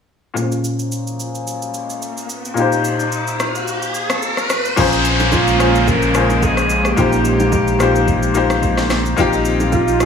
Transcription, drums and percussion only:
0.37 shaker medium
0.52 shaker medium
0.64 shaker medium
0.79 shaker soft
0.92 shaker medium
1.07 shaker soft
1.20 shaker medium
1.35 shaker medium
1.47 shaker medium
1.62 shaker medium
1.74 shaker medium
1.90 shaker medium
2.02 shaker medium
2.17 shaker soft
2.29 shaker medium
2.45 shaker medium
2.57 shaker medium
2.72 shaker medium
2.84 shaker medium
2.99 shaker medium
3.12 shaker medium
3.27 shaker medium
3.40 cross-stick medium
3.40 shaker medium
3.55 shaker medium
3.67 shaker medium
3.82 shaker medium
3.94 shaker medium
4.10 cross-stick loud
4.10 shaker medium
4.22 shaker medium
4.37 cross-stick medium
4.37 shaker soft
4.50 cross-stick loud
4.50 shaker medium
4.65 shaker soft
4.77 kick loud
4.77 crash medium
4.77 low conga medium
4.77 shaker medium
4.92 shaker medium
5.05 shaker medium
5.20 high bongo medium
5.20 low bongo medium
5.20 shaker medium
5.32 kick medium
5.32 high bongo medium
5.32 low bongo medium
5.32 low conga medium
5.32 shaker medium
5.48 shaker medium
5.60 cross-stick medium
5.60 shaker medium
5.75 shaker medium
5.87 kick loud
5.87 low conga medium
5.87 shaker medium
6.02 shaker medium
6.14 cross-stick medium
6.14 shaker medium
6.30 low bongo medium
6.30 shaker medium
6.42 kick loud
6.42 high bongo medium
6.42 shaker medium
6.57 cross-stick medium
6.57 shaker medium
6.70 shaker medium
6.85 cross-stick medium
6.85 shaker soft
6.97 kick loud
6.97 low conga medium
6.97 shaker medium
7.12 shaker medium
7.25 shaker medium
7.40 high bongo soft
7.40 low bongo medium
7.40 shaker medium
7.52 kick medium
7.52 high bongo medium
7.52 low bongo medium
7.52 low conga medium
7.52 shaker medium
7.68 shaker medium
7.80 cross-stick medium
7.80 shaker medium
7.95 shaker medium
8.07 kick loud
8.07 low conga medium
8.07 shaker medium
8.23 shaker medium
8.35 shaker medium
8.50 cross-stick loud
8.50 low bongo medium
8.50 shaker medium
8.63 kick loud
8.63 high bongo medium
8.63 shaker medium
8.77 cross-stick medium
8.77 snare medium
8.77 shaker medium
8.90 cross-stick loud
8.90 snare medium
8.90 shaker medium
9.06 shaker soft
9.18 kick loud
9.18 low conga medium
9.18 shaker medium
9.33 shaker medium
9.45 shaker medium
9.60 high bongo soft
9.60 low bongo medium
9.60 shaker medium
9.72 kick medium
9.72 high bongo medium
9.72 low bongo medium
9.72 low conga medium
9.72 shaker medium
9.88 shaker medium
10.00 cross-stick medium
10.00 shaker medium

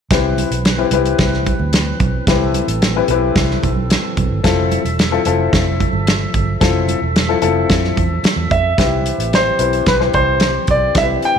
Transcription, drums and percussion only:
0.10 kick medium
0.10 snare medium
0.10 closed hi-hat loud
0.10 muted conga soft
0.10 low conga medium
0.37 closed hi-hat medium
0.37 high conga medium
0.52 closed hi-hat medium
0.65 snare loud
0.65 closed hi-hat medium
0.91 closed hi-hat medium
0.91 muted conga soft
0.91 high conga medium
0.91 low conga medium
1.05 closed hi-hat soft
1.19 kick medium
1.19 snare loud
1.19 closed hi-hat medium
1.34 snare soft
1.46 kick medium
1.46 closed hi-hat medium
1.46 high conga medium
1.59 high conga medium
1.73 snare loud
1.73 closed hi-hat medium
2.00 kick medium
2.00 closed hi-hat medium
2.00 muted conga soft
2.00 high conga medium
2.00 low conga medium
2.27 kick loud
2.27 snare loud
2.27 closed hi-hat loud
2.27 low conga medium
2.54 closed hi-hat medium
2.54 muted conga soft
2.54 high conga medium
2.68 closed hi-hat medium
2.82 snare loud
2.82 closed hi-hat medium
3.08 closed hi-hat medium
3.08 muted conga soft
3.08 high conga medium
3.08 low conga medium
3.36 kick medium
3.36 snare loud
3.36 closed hi-hat medium
3.51 snare soft
3.63 kick medium
3.63 closed hi-hat soft
3.63 muted conga soft
3.63 high conga medium
3.76 high conga medium
3.90 snare loud
3.90 closed hi-hat medium
4.17 kick medium
4.17 closed hi-hat medium
4.17 high conga medium
4.17 low conga medium
4.44 kick loud
4.44 snare loud
4.44 closed hi-hat medium
4.44 muted conga soft
4.44 low conga medium
4.71 closed hi-hat medium
4.71 muted conga soft
4.71 high conga medium
4.86 closed hi-hat medium
4.99 snare loud
4.99 closed hi-hat medium
5.25 closed hi-hat medium
5.25 high conga medium
5.25 low conga medium
5.53 kick medium
5.53 snare loud
5.53 closed hi-hat medium
5.80 kick medium
5.80 closed hi-hat medium
5.80 muted conga soft
5.80 high conga medium
5.93 high conga medium
6.07 snare loud
6.07 closed hi-hat medium
6.07 muted conga soft
6.34 kick medium
6.34 closed hi-hat medium
6.34 muted conga soft
6.34 high conga medium
6.34 low conga medium
6.61 kick loud
6.61 snare loud
6.61 closed hi-hat loud
6.61 low conga medium
6.88 closed hi-hat medium
6.88 muted conga soft
6.88 high conga medium
7.16 snare loud
7.16 closed hi-hat medium
7.42 closed hi-hat medium
7.42 muted conga soft
7.42 high conga medium
7.42 low conga medium
7.69 kick medium
7.69 snare loud
7.69 closed hi-hat medium
7.69 muted conga soft
7.84 snare soft
7.96 kick medium
7.96 closed hi-hat medium
7.96 muted conga soft
7.96 high conga medium
8.09 high conga medium
8.23 snare loud
8.23 closed hi-hat medium
8.23 muted conga soft
8.50 kick medium
8.50 closed hi-hat medium
8.50 muted conga soft
8.50 high conga medium
8.50 low conga medium
8.78 kick loud
8.78 snare loud
8.78 closed hi-hat medium
9.06 closed hi-hat medium
9.20 closed hi-hat medium
9.33 snare loud
9.33 closed hi-hat medium
9.59 closed hi-hat medium
9.73 closed hi-hat soft
9.86 kick medium
9.86 snare loud
9.86 closed hi-hat medium
10.01 snare soft
10.14 kick medium
10.14 closed hi-hat medium
10.40 snare loud
10.40 closed hi-hat medium
10.67 kick medium
10.67 closed hi-hat medium
10.95 kick loud
10.95 snare loud
10.95 closed hi-hat medium
11.22 closed hi-hat medium

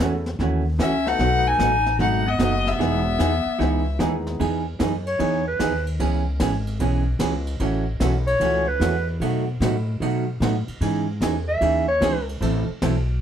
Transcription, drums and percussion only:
0.00 snare medium
0.00 hi-hat pedal medium
0.26 snare soft
0.40 brush sweep soft
0.40 snare soft
0.80 snare medium
0.80 hi-hat pedal medium
1.07 snare soft
1.19 brush sweep medium
1.19 snare soft
1.59 snare medium
1.59 hi-hat pedal medium
1.86 snare soft
2.00 brush sweep soft
2.00 snare soft
2.39 snare medium
2.39 hi-hat pedal medium
2.67 snare soft
2.81 brush sweep medium
2.81 snare soft
3.20 snare medium
3.20 hi-hat pedal medium
3.60 brush sweep soft
3.60 snare soft
4.00 snare medium
4.00 hi-hat pedal medium
4.27 snare soft
4.40 ride medium
4.80 snare medium
4.80 hi-hat pedal medium
4.80 ride medium
5.07 ride soft
5.20 ride medium
5.60 snare medium
5.60 hi-hat pedal medium
5.60 ride medium
5.87 ride soft
6.00 ride medium
6.40 snare medium
6.40 hi-hat pedal soft
6.40 ride medium
6.67 ride soft
6.80 ride medium
7.19 snare medium
7.19 hi-hat pedal medium
7.19 ride medium
7.47 ride soft
7.60 ride medium
8.00 snare medium
8.00 hi-hat pedal medium
8.00 ride medium
8.27 ride soft
8.41 ride medium
8.81 snare medium
8.81 hi-hat pedal medium
8.81 ride medium
9.21 ride medium
9.62 snare medium
9.62 hi-hat pedal medium
9.62 ride medium
10.02 ride medium
10.42 snare medium
10.42 hi-hat pedal medium
10.42 ride medium
10.68 ride medium
10.81 ride medium
11.21 snare medium
11.21 hi-hat pedal medium
11.21 ride medium
11.61 ride medium
12.02 snare medium
12.02 hi-hat pedal medium
12.02 ride medium
12.29 ride medium
12.42 ride medium
12.82 snare medium
12.82 hi-hat pedal medium
12.82 ride medium

